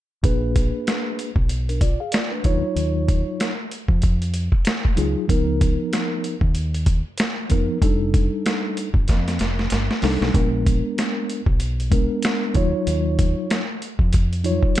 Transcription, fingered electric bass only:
0.24 0.70 A#1 medium
1.36 1.96 B1 medium
2.45 2.61 D#2 medium
2.76 3.22 D#2 medium
3.89 4.48 F2 medium
4.98 5.14 C#2 medium
5.29 5.75 C#2 medium
6.41 7.01 D#2 medium
7.51 7.67 F2 medium
7.82 8.28 F1 medium
8.94 9.10 G1 medium
9.09 9.37 F2 loud
9.40 9.68 F1 medium
9.72 9.88 G1 medium
10.03 10.19 C2 medium
10.21 10.33 B1 medium
10.34 10.80 A#1 loud
11.46 12.06 B1 medium
12.55 12.72 D#2 medium
12.87 13.33 D#2 medium
13.99 14.59 F2 medium

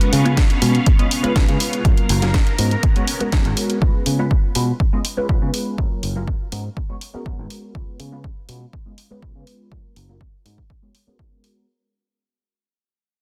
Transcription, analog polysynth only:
0.00 0.22 G#3 medium
0.00 0.22 B3 medium
0.00 0.22 C#4 medium
0.00 0.22 F4 medium
0.00 0.22 B4 medium
0.25 0.32 G#3 medium
0.25 0.32 B3 medium
0.25 0.32 C#4 medium
0.25 0.32 F4 medium
0.25 0.32 B4 loud
0.61 0.73 G#3 medium
0.61 0.73 B3 medium
0.61 0.73 C#4 medium
0.61 0.73 F4 medium
0.61 0.73 B4 medium
0.99 1.06 G#3 medium
0.99 1.06 B3 medium
0.99 1.06 C#4 medium
0.99 1.06 F4 medium
0.99 1.06 D#5 loud
1.23 1.33 G#3 loud
1.23 1.33 B3 medium
1.23 1.33 C#4 medium
1.23 1.33 F4 medium
1.23 1.33 B4 loud
1.35 1.82 G#3 medium
1.35 1.82 B3 medium
1.35 1.82 C#4 medium
1.35 1.82 F4 medium
1.35 1.82 B4 loud
1.85 2.19 F#3 medium
1.85 2.19 A#3 medium
1.85 2.19 C#4 medium
1.85 2.19 F4 medium
1.85 2.20 A#4 medium
2.22 2.29 F#3 medium
2.22 2.29 A#3 medium
2.22 2.29 C#4 medium
2.22 2.29 F4 medium
2.22 2.29 A#4 loud
2.59 2.70 G#3 medium
2.59 2.70 B3 medium
2.59 2.70 C#4 medium
2.59 2.70 F#4 medium
2.59 2.70 A#4 medium
2.96 3.02 G#3 medium
2.96 3.03 B3 medium
2.96 3.03 C#4 medium
2.96 3.03 F#4 medium
2.96 3.03 C#5 loud
3.20 3.30 G#3 medium
3.20 3.30 B3 medium
3.20 3.30 C#4 medium
3.20 3.30 F#4 medium
3.20 3.30 A#4 loud
3.32 3.79 G#3 medium
3.32 3.79 B3 medium
3.32 3.79 C#4 medium
3.32 3.79 F#4 medium
3.32 3.79 A#4 loud
3.82 4.16 G#3 medium
3.82 4.16 B3 medium
3.82 4.16 C#4 medium
3.82 4.16 F4 medium
3.82 4.16 B4 medium
4.19 4.25 G#3 medium
4.19 4.26 B3 medium
4.19 4.26 C#4 medium
4.19 4.26 F4 medium
4.19 4.26 B4 loud
4.55 4.67 G#3 medium
4.55 4.67 B3 medium
4.55 4.67 C#4 medium
4.55 4.67 F4 medium
4.55 4.67 B4 medium
4.93 4.99 G#3 medium
4.93 4.99 B3 medium
4.93 5.00 C#4 medium
4.93 5.00 F4 medium
4.93 5.00 D#5 loud
5.17 5.26 G#3 medium
5.17 5.26 B3 medium
5.17 5.26 C#4 medium
5.17 5.26 F4 medium
5.17 5.27 B4 loud
5.29 5.76 G#3 medium
5.29 5.76 B3 medium
5.29 5.76 C#4 medium
5.29 5.76 F4 medium
5.29 5.76 B4 loud
6.16 6.22 F#3 medium
6.16 6.22 A#3 medium
6.16 6.22 C#4 medium
6.16 6.23 F4 medium
6.16 6.23 A#4 loud
6.52 6.63 G#3 medium
6.52 6.63 B3 medium
6.52 6.63 C#4 medium
6.52 6.64 F#4 medium
6.52 6.64 A#4 medium
6.89 6.96 G#3 medium
6.89 6.96 B3 medium
6.89 6.96 C#4 medium
6.89 6.96 F#4 medium
6.89 6.96 C#5 loud
7.14 7.23 G#3 medium
7.14 7.23 B3 medium
7.14 7.23 C#4 medium
7.14 7.23 F#4 medium
7.14 7.23 A#4 loud
7.26 7.72 B3 medium
7.26 7.72 F#4 medium
7.75 8.09 G#3 medium
7.75 8.09 B3 medium
7.75 8.09 C#4 medium
7.75 8.10 F4 medium
7.75 8.10 B4 medium
8.12 8.19 G#3 medium
8.12 8.19 B3 medium
8.12 8.19 C#4 medium
8.12 8.19 F4 medium
8.12 8.19 B4 loud
8.49 8.60 G#3 medium
8.49 8.60 B3 medium
8.49 8.60 C#4 medium
8.49 8.60 F4 medium
8.49 8.60 B4 medium
8.86 8.92 G#3 medium
8.86 8.93 B3 medium
8.86 8.93 C#4 medium
8.86 8.93 F4 medium
8.86 8.93 D#5 loud
9.10 9.20 G#3 medium
9.10 9.20 B3 medium
9.10 9.20 C#4 medium
9.10 9.20 F4 medium
9.10 9.20 B4 loud
9.71 10.06 F#3 medium
10.09 10.16 F#3 medium
10.09 10.16 A#3 medium
10.09 10.16 C#4 medium
10.09 10.16 F4 medium
10.09 10.16 A#4 loud
10.46 10.57 G#3 medium
10.46 10.57 B3 medium
10.46 10.57 C#4 medium
10.46 10.57 F#4 medium
10.46 10.57 A#4 medium
10.82 10.89 G#3 medium
10.82 10.89 B3 medium
10.82 10.89 C#4 medium
10.82 10.89 F#4 medium
10.82 10.89 C#5 loud
11.07 11.16 G#3 medium
11.07 11.16 B3 medium
11.07 11.16 C#4 medium
11.07 11.16 F#4 medium
11.07 11.17 A#4 loud
11.19 11.65 G#3 medium
11.19 11.65 B3 medium
11.19 11.65 C#4 medium

